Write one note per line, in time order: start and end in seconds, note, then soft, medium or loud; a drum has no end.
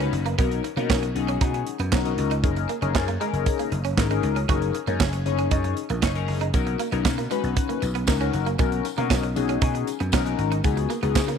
0.00 0.09 C#4 medium
0.00 0.26 C#4 medium
0.00 0.27 D#4 medium
0.00 0.27 F#4 medium
0.00 0.27 B4 loud
0.00 closed hi-hat medium
0.12 0.34 F#1 medium
0.12 muted clean electric guitar stroke soft
0.12 closed hi-hat medium
0.26 0.35 A#3 medium
0.26 closed hi-hat medium
0.38 0.59 B1 loud
0.38 0.48 B3 loud
0.38 0.65 C#4 medium
0.38 0.65 D#4 medium
0.38 0.65 F#4 medium
0.38 0.65 A#4 medium
0.38 kick loud
0.38 closed hi-hat medium
0.51 closed hi-hat soft
0.64 muted clean electric guitar stroke soft
0.64 closed hi-hat medium
0.76 0.87 B2 loud
0.76 0.86 A#3 medium
0.76 1.03 C#4 medium
0.76 1.04 D#4 medium
0.76 1.04 F#4 medium
0.76 1.04 A#4 medium
0.76 closed hi-hat medium
0.90 1.11 B1 loud
0.90 0.99 C#4 medium
0.90 kick loud
0.90 snare loud
0.90 clap medium
1.03 muted clean electric guitar stroke soft
1.03 closed hi-hat medium
1.15 1.36 B1 loud
1.15 1.69 C#4 medium
1.15 1.69 D#4 medium
1.15 1.69 F#4 medium
1.15 1.69 G#4 medium
1.15 closed hi-hat medium
1.28 1.37 C#4 loud
1.28 closed hi-hat soft
1.41 1.62 B2 loud
1.41 1.50 D#4 medium
1.41 kick loud
1.41 closed hi-hat loud
1.54 muted clean electric guitar stroke soft
1.54 closed hi-hat medium
1.67 closed hi-hat medium
1.79 1.90 F#2 medium
1.79 1.89 B3 medium
1.79 closed hi-hat medium
1.92 2.13 B1 loud
1.92 2.01 C#4 medium
1.92 2.02 C#4 medium
1.92 2.01 D#4 medium
1.92 2.01 F#4 medium
1.92 2.02 A#4 medium
1.92 kick loud
1.92 snare loud
1.92 clap medium
2.04 2.32 C#4 medium
2.04 2.32 D#4 medium
2.04 2.32 F#4 medium
2.04 2.32 A#4 loud
2.04 closed hi-hat medium
2.18 2.45 C#2 loud
2.18 muted clean electric guitar stroke soft
2.18 closed hi-hat medium
2.31 2.40 D#4 medium
2.31 closed hi-hat medium
2.43 2.65 F#1 loud
2.43 2.70 C#4 medium
2.43 2.70 D#4 medium
2.43 2.70 G#4 medium
2.43 2.71 A#4 medium
2.43 kick loud
2.43 closed hi-hat medium
2.56 muted clean electric guitar stroke soft
2.56 closed hi-hat medium
2.69 2.78 A#3 medium
2.69 closed hi-hat medium
2.82 2.92 F#1 loud
2.82 3.09 C#4 medium
2.82 2.91 C#4 medium
2.82 3.09 D#4 medium
2.82 3.09 G#4 medium
2.82 3.09 A#4 medium
2.82 closed hi-hat medium
2.95 3.16 F#2 loud
2.95 muted clean electric guitar stroke soft
2.95 kick loud
2.95 snare loud
2.95 clap medium
3.08 3.17 A#3 medium
3.08 closed hi-hat medium
3.20 3.30 G#3 medium
3.20 3.74 C#4 medium
3.20 3.74 D#4 medium
3.20 3.74 G#4 medium
3.20 3.74 A#4 loud
3.20 closed hi-hat medium
3.33 3.44 F#1 medium
3.33 closed hi-hat soft
3.46 kick loud
3.46 closed hi-hat loud
3.59 3.68 A#3 medium
3.59 closed hi-hat medium
3.72 3.93 F#1 medium
3.72 muted clean electric guitar stroke soft
3.72 closed hi-hat medium
3.85 3.94 C#4 medium
3.85 closed hi-hat medium
3.97 4.18 G#1 medium
3.97 4.06 C#4 medium
3.97 4.06 D#4 medium
3.97 4.06 G#4 medium
3.97 4.07 A#4 medium
3.97 kick loud
3.97 snare loud
3.97 clap medium
4.10 4.37 C#4 medium
4.10 4.37 D#4 medium
4.10 4.20 D#4 medium
4.10 4.37 G#4 medium
4.10 4.37 A#4 loud
4.10 closed hi-hat medium
4.23 4.44 C#2 medium
4.23 muted clean electric guitar stroke soft
4.23 closed hi-hat medium
4.36 4.45 C#4 medium
4.36 closed hi-hat medium
4.48 4.70 F#1 loud
4.48 4.75 C#4 medium
4.48 4.75 D#4 medium
4.48 4.58 F#4 loud
4.48 4.76 G#4 medium
4.48 4.76 A#4 medium
4.48 kick loud
4.48 closed hi-hat medium
4.62 closed hi-hat soft
4.75 muted clean electric guitar stroke soft
4.75 closed hi-hat medium
4.87 4.98 F#2 loud
4.87 4.96 A#3 medium
4.87 5.14 C#4 medium
4.87 5.14 D#4 medium
4.87 5.14 G#4 medium
4.87 5.14 C#5 loud
4.87 closed hi-hat soft
5.00 5.21 F#1 medium
5.00 5.09 C#4 medium
5.00 kick loud
5.00 snare loud
5.00 clap medium
5.13 muted clean electric guitar stroke soft
5.13 closed hi-hat medium
5.25 5.47 F#1 loud
5.25 5.79 C#4 medium
5.25 5.79 D#4 medium
5.25 5.79 G#4 medium
5.25 5.79 C#5 loud
5.25 closed hi-hat medium
5.39 5.48 C#4 medium
5.39 closed hi-hat soft
5.51 5.72 F#2 loud
5.51 5.60 D#4 medium
5.51 kick loud
5.51 closed hi-hat loud
5.64 muted clean electric guitar stroke soft
5.64 closed hi-hat medium
5.77 closed hi-hat medium
5.90 6.00 A#1 medium
5.90 5.99 A#3 medium
5.90 closed hi-hat medium
6.02 6.24 F#1 loud
6.02 6.11 C#4 medium
6.02 6.12 C#4 medium
6.02 6.11 D#4 medium
6.02 6.12 G#4 medium
6.02 6.12 C#5 loud
6.02 kick loud
6.02 snare loud
6.02 clap loud
6.15 6.42 C#4 medium
6.15 6.42 D#4 medium
6.15 6.42 G#4 medium
6.15 6.42 A#4 loud
6.15 closed hi-hat medium
6.28 6.49 F#1 medium
6.28 muted clean electric guitar stroke soft
6.28 open hi-hat medium
6.41 6.50 D#4 medium
6.41 closed hi-hat medium
6.54 6.75 B1 loud
6.54 6.81 C#4 medium
6.54 6.81 D#4 medium
6.54 6.81 F#4 medium
6.54 6.81 A#4 medium
6.54 kick loud
6.54 closed hi-hat medium
6.54 tambourine medium
6.67 muted clean electric guitar stroke soft
6.67 closed hi-hat soft
6.79 6.88 A#3 medium
6.79 closed hi-hat medium
6.79 tambourine medium
6.92 7.03 B1 medium
6.92 7.01 B3 medium
6.92 7.19 C#4 medium
6.92 7.19 D#4 medium
6.92 7.19 F#4 medium
6.92 7.19 A#4 medium
6.92 closed hi-hat medium
7.05 7.26 B2 loud
7.05 muted clean electric guitar stroke soft
7.05 kick loud
7.05 snare loud
7.05 clap medium
7.05 tambourine medium
7.18 7.27 A#3 medium
7.18 closed hi-hat medium
7.31 7.40 G#3 medium
7.31 7.84 C#4 medium
7.31 7.84 D#4 medium
7.31 7.84 F#4 medium
7.31 7.85 B4 loud
7.31 closed hi-hat medium
7.31 tambourine medium
7.44 7.54 B1 medium
7.44 closed hi-hat soft
7.56 kick loud
7.56 closed hi-hat loud
7.56 tambourine soft
7.69 7.78 A#3 medium
7.69 closed hi-hat medium
7.82 8.03 B1 loud
7.82 muted clean electric guitar stroke soft
7.82 closed hi-hat medium
7.82 tambourine medium
7.95 8.04 B3 medium
7.95 closed hi-hat medium
8.07 8.29 C#2 medium
8.07 8.16 C#4 loud
8.07 8.17 D#4 medium
8.07 8.17 F#4 medium
8.07 8.17 A#4 loud
8.07 kick loud
8.07 snare loud
8.07 clap loud
8.07 tambourine medium
8.20 8.47 C#4 loud
8.20 8.30 C#4 medium
8.20 8.47 D#4 medium
8.20 8.47 F#4 medium
8.20 8.48 A#4 loud
8.20 closed hi-hat medium
8.33 8.55 F#1 medium
8.33 muted clean electric guitar stroke soft
8.33 closed hi-hat medium
8.33 tambourine soft
8.46 8.55 A#3 medium
8.46 closed hi-hat medium
8.59 8.80 B1 loud
8.59 8.68 B3 loud
8.59 8.86 C#4 medium
8.59 8.86 D#4 medium
8.59 8.86 F#4 medium
8.59 8.86 A#4 medium
8.59 kick loud
8.59 closed hi-hat medium
8.59 tambourine medium
8.72 closed hi-hat soft
8.85 muted clean electric guitar stroke soft
8.85 closed hi-hat medium
8.85 tambourine medium
8.97 9.08 B2 loud
8.97 9.07 A#3 medium
8.97 9.24 C#4 medium
8.97 9.24 D#4 medium
8.97 9.24 F#4 medium
8.97 9.25 A#4 medium
8.97 closed hi-hat medium
9.10 9.31 B1 medium
9.10 9.20 C#4 medium
9.10 kick loud
9.10 snare loud
9.10 clap medium
9.10 tambourine medium
9.23 muted clean electric guitar stroke soft
9.23 closed hi-hat medium
9.36 9.57 B1 medium
9.36 9.89 C#4 medium
9.36 9.89 D#4 medium
9.36 9.90 F#4 medium
9.36 9.90 G#4 medium
9.36 closed hi-hat medium
9.36 tambourine medium
9.49 9.58 C#4 medium
9.49 closed hi-hat soft
9.62 9.83 B2 loud
9.62 9.71 D#4 medium
9.62 kick loud
9.62 closed hi-hat loud
9.75 muted clean electric guitar stroke soft
9.75 closed hi-hat medium
9.87 closed hi-hat medium
9.87 tambourine medium
10.00 10.11 F#2 medium
10.00 10.09 B3 medium
10.00 closed hi-hat medium
10.12 10.34 B1 loud
10.12 10.22 C#4 medium
10.12 10.22 D#4 medium
10.12 10.22 F#4 medium
10.12 10.22 A#4 loud
10.12 kick loud
10.12 snare loud
10.12 clap medium
10.12 tambourine loud
10.25 10.52 C#4 medium
10.25 10.52 D#4 medium
10.25 10.53 F#4 medium
10.25 10.53 A#4 loud
10.25 closed hi-hat medium
10.39 10.59 G#1 medium
10.39 muted clean electric guitar stroke soft
10.39 closed hi-hat medium
10.52 10.61 D#4 medium
10.52 closed hi-hat medium
10.64 10.85 C#2 loud
10.64 10.91 B3 medium
10.64 10.91 D#4 medium
10.64 10.91 F#4 medium
10.64 10.91 G#4 medium
10.64 kick loud
10.64 closed hi-hat medium
10.64 tambourine medium
10.77 muted clean electric guitar stroke soft
10.77 closed hi-hat medium
10.90 10.99 A#3 medium
10.90 closed hi-hat medium
10.90 tambourine medium
11.02 11.13 C#2 loud
11.02 11.29 B3 medium
11.02 11.12 B3 medium
11.02 11.29 D#4 medium
11.02 11.29 F#4 medium
11.02 11.30 G#4 medium
11.02 closed hi-hat medium
11.15 11.36 C#3 loud
11.15 muted clean electric guitar stroke soft
11.15 kick loud
11.15 snare loud
11.15 clap medium
11.15 tambourine medium
11.28 11.37 A#3 medium
11.28 closed hi-hat medium